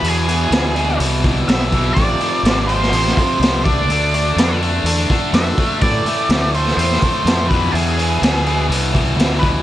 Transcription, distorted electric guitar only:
\new Staff \with { instrumentName = "Distorted electric guitar" } { \clef bass \time 4/4 \key e \phrygian \tempo 4 = 125 <e, b, e>8 <e, b, e>8 <e, b, e>8 <e, b, e>8 <e, b, e>8 <e, b, e>8 <e, b, e>8 <e, b, e>8 | <f, c f>8 <f, c f>8 <f, c f>8 <f, c f>8 <f, c f>8 <f, c f>8 <f, c f>8 <d a d'>8 | <d a d'>8 <d a d'>8 <d a d'>8 <d a d'>8 <d a d'>8 <d a d'>8 <d a d'>8 <d a d'>8 | <a, e a>8 <a, e a>8 <a, e a>8 <a, e a>8 <a, e a>8 <a, e a>8 <a, e a>8 <e, b, e>8 |
<e, b, e>8 <e, b, e>8 <e, b, e>8 <e, b, e>8 <e, b, e>8 <e, b, e>8 <e, b, e>8 <e, b, e>8 | }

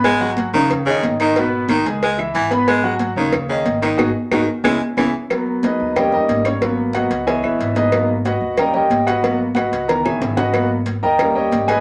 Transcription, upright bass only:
\new Staff \with { instrumentName = "Upright bass" } { \clef bass \time 4/4 \key gis \minor \tempo 4 = 183 gis,,4. dis,4. gis,,4~ | gis,,4. cis,4. gis,,4~ | gis,,4. dis,4. gis,,4 | gis,,8 r8 gis,,8 r8 cis,8 r8 cis,8 r8 |
r4. dis,4. gis,,4~ | gis,,4. cis,4 ais,,8 gis,,4~ | gis,,4. dis,4. gis,,4~ | gis,,4. cis,4 ais,,8 gis,,4~ |
gis,,4. dis,4. gis,,4 | }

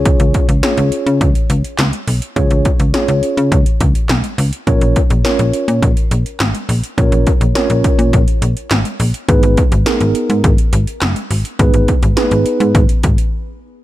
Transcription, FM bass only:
\new Staff \with { instrumentName = "FM bass" } { \clef bass \time 4/4 \key des \mixolydian \tempo 4 = 104 des,16 des,16 r16 des,16 r16 des,16 r16 des16 des,16 r16 des,16 r16 des,16 r16 ces,16 r16 | des,16 des,16 r16 des,16 r16 des,16 r16 des16 des,16 r16 des,16 r16 ces,16 r16 des,16 r16 | bes,,16 bes,,16 r16 bes,,16 r16 bes,,16 r16 bes,16 bes,,16 r16 bes,,16 r16 aes,,16 r16 bes,,16 r16 | bes,,16 bes,,16 r16 bes,,16 r16 bes,,16 r16 bes,16 bes,,16 r16 bes,,16 r16 aes,,16 r16 bes,,16 r16 |
aes,,16 aes,,16 r16 aes,,16 r16 aes,,16 r16 aes,16 aes,,16 r16 aes,,16 r16 ges,,16 r16 aes,,16 r16 | aes,,16 aes,,16 r16 aes,,16 r16 aes,,16 r16 aes,16 aes,,16 r16 aes,,16 r4 r16 | }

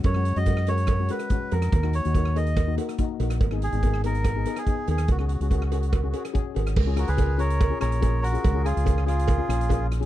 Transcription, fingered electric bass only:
\new Staff \with { instrumentName = "Fingered electric bass" } { \clef bass \time 4/4 \key cis \mixolydian \tempo 4 = 143 fis,8. fis,2 r8. eis,8 | dis,8. dis,2 r8. ais,,8 | gis,,8. gis,,2 r8. dis,8 | cis,8. cis,2 r8. gis,,8 |
cis,8. cis,4.~ cis,16 ais,,4. | cis,8. cis,4.~ cis,16 ais,,4. | }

